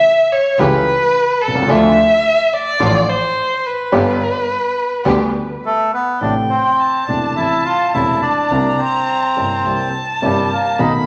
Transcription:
0.00 0.33 E5 medium
0.32 0.60 C#5 medium
0.58 0.82 C#2 medium
0.58 0.82 C#3 medium
0.58 0.82 E3 medium
0.58 0.82 A3 medium
0.58 0.82 C#4 medium
0.58 0.82 G4 medium
0.58 1.43 B4 medium
1.42 1.70 C2 soft
1.42 1.71 A4 medium
1.48 1.55 B1 soft
1.55 1.62 C2 medium
1.62 1.69 C#2 medium
1.68 1.93 D2 medium
1.68 1.94 D2 medium
1.68 1.93 D3 medium
1.68 1.92 F3 medium
1.68 1.93 A3 medium
1.68 1.93 D4 medium
1.68 1.93 F4 medium
1.68 1.93 A4 medium
1.68 2.55 E5 medium
2.53 3.11 D5 medium
2.80 3.04 A1 medium
2.80 3.04 A2 medium
2.80 3.04 F3 medium
2.80 3.04 A3 medium
2.80 3.05 A3 medium
2.80 3.04 D4 medium
2.80 3.05 D4 medium
2.80 3.05 F4 medium
2.80 3.04 A4 medium
3.09 3.68 C5 medium
3.66 5.64 B4 medium
3.92 4.16 G1 medium
3.92 4.17 G1 medium
3.92 4.16 G2 medium
3.92 4.16 D3 medium
3.92 4.16 G3 medium
3.92 4.16 B3 medium
3.92 4.17 B3 medium
3.92 4.17 D4 medium
3.92 4.16 G4 medium
3.92 4.17 G4 medium
5.05 5.30 D2 medium
5.05 5.30 D3 medium
5.05 5.30 G3 medium
5.05 5.30 B3 medium
5.05 5.30 D4 medium
5.05 5.30 G4 medium
5.66 5.92 A3 medium
5.94 6.20 B3 medium
6.21 6.46 A1 medium
6.21 6.46 A2 soft
6.21 6.46 C3 soft
6.21 6.46 E3 soft
6.21 6.46 A3 soft
6.21 6.35 D4 medium
6.21 6.46 E4 soft
6.21 6.81 G5 soft
6.50 7.04 C4 medium
6.80 8.52 A5 medium
7.08 7.33 E1 soft
7.08 7.33 E2 soft
7.08 7.32 C3 soft
7.08 7.33 E3 soft
7.08 7.33 A3 soft
7.08 7.35 D4 medium
7.08 7.33 E4 soft
7.36 7.61 A1 soft
7.36 7.62 A1 soft
7.36 7.62 A2 soft
7.36 7.61 C3 soft
7.36 7.61 E3 soft
7.36 7.62 A3 soft
7.36 7.63 E4 medium
7.36 7.62 E4 soft
7.65 7.92 F4 medium
7.94 8.19 E1 medium
7.94 8.19 E2 medium
7.94 8.18 C3 soft
7.94 8.18 E3 soft
7.94 8.19 A3 soft
7.94 8.21 E4 medium
7.94 8.19 E4 medium
8.22 8.81 D4 medium
8.51 8.75 C2 medium
8.51 8.75 C3 medium
8.51 8.75 G3 soft
8.51 8.75 A#3 soft
8.51 8.75 E4 medium
8.51 9.67 A#5 medium
8.78 9.89 C4 medium
9.36 9.61 G1 soft
9.36 9.61 G2 soft
9.36 9.61 C3 soft
9.36 9.61 G3 soft
9.36 9.61 A#3 soft
9.36 9.61 E4 soft
9.64 9.89 C2 soft
9.64 9.89 C3 soft
9.64 9.89 G3 soft
9.64 9.89 A#3 soft
9.64 9.89 E4 soft
9.64 10.81 A5 medium
10.22 10.46 G1 medium
10.22 10.46 G2 medium
10.22 10.46 C3 soft
10.22 10.46 G3 medium
10.22 10.50 G3 medium
10.22 10.46 A#3 soft
10.22 10.47 E4 medium
10.53 10.81 A#3 medium
10.79 11.03 B1 medium
10.79 11.03 B2 medium
10.79 11.03 D#3 soft
10.79 11.03 A3 soft
10.79 11.03 B3 soft
10.79 10.93 D#4 medium
10.79 11.03 F#4 medium
10.79 11.06 B5 medium

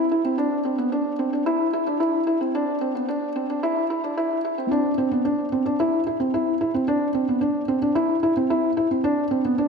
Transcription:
0.11 0.21 E4 medium
0.25 0.34 C4 medium
0.38 0.57 D4 medium
0.65 0.75 C4 medium
0.78 0.88 B3 medium
0.92 1.12 D4 medium
1.19 1.29 C4 medium
1.33 1.43 D4 medium
1.46 1.66 E4 medium
1.73 1.83 E4 medium
1.87 1.97 D4 medium
2.00 2.20 E4 medium
2.27 2.37 E4 medium
2.41 2.51 C4 medium
2.55 2.74 D4 medium
2.81 2.91 C4 medium
2.95 3.05 B3 medium
3.08 3.28 D4 medium
3.36 3.45 C4 medium
3.50 3.59 D4 medium
3.63 3.82 E4 loud
3.90 4.00 E4 medium
4.04 4.13 D4 medium
4.17 4.37 E4 medium
4.45 4.54 E4 medium
4.58 4.67 C4 medium
4.71 4.90 D4 medium
4.98 5.08 C4 medium
5.11 5.21 B3 medium
5.25 5.44 D4 medium
5.52 5.62 C4 medium
5.66 5.75 D4 medium
5.80 5.99 E4 medium
6.07 6.16 E4 medium
6.20 6.29 C4 medium
6.34 6.53 E4 medium
6.61 6.70 E4 medium
6.74 6.84 C4 medium
6.88 7.07 D4 loud
7.14 7.24 C4 medium
7.28 7.38 B3 medium
7.41 7.60 D4 medium
7.68 7.78 C4 medium
7.82 7.92 D4 medium
7.95 8.15 E4 medium
8.23 8.32 E4 medium
8.37 8.46 C4 medium
8.50 8.69 E4 medium
8.77 8.86 E4 medium
8.91 9.00 C4 medium
9.04 9.23 D4 loud
9.31 9.40 C4 medium
9.45 9.54 B3 medium
9.58 9.68 D4 medium

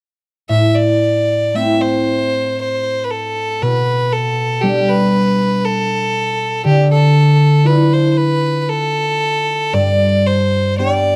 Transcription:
0.49 3.67 A2 soft
0.49 0.76 E5 medium
0.75 1.57 D5 medium
1.54 4.87 A3 soft
1.54 3.68 C4 soft
1.54 4.16 E4 soft
1.54 1.83 E5 medium
1.82 2.60 C5 medium
2.61 3.06 C5 medium
3.04 3.12 B4 soft
3.11 3.64 A4 medium
3.62 6.71 B2 soft
3.62 4.14 B4 medium
4.13 4.63 A4 medium
4.61 6.71 G3 soft
4.61 7.74 B3 soft
4.61 7.44 D4 soft
4.61 4.90 G4 medium
4.89 5.67 B4 medium
5.65 6.65 A4 medium
6.65 9.80 D3 soft
6.65 6.89 G4 medium
6.91 7.68 A4 medium
7.64 10.44 D4 soft
7.64 10.26 E4 soft
7.64 10.17 F4 soft
7.64 7.95 B4 medium
7.93 8.11 C5 medium
8.11 8.19 C5 soft
8.17 8.62 B4 medium
8.62 8.71 B4 soft
8.69 9.75 A4 medium
9.73 11.16 G2 soft
9.73 10.28 D5 medium
10.27 10.77 C5 medium
10.78 11.16 B3 soft
10.78 11.16 D4 soft
10.78 11.16 G4 soft
10.78 11.16 D5 medium

